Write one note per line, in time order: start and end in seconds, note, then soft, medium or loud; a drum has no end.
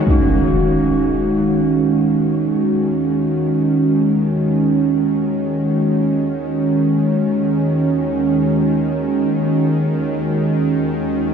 0.00 11.34 D#3 medium
0.00 11.34 G#3 medium
0.00 11.34 C#4 medium
0.00 11.34 F#4 medium
0.07 11.34 D#2 medium
0.07 11.34 D#3 medium
0.07 impact medium
0.11 11.34 D#4 soft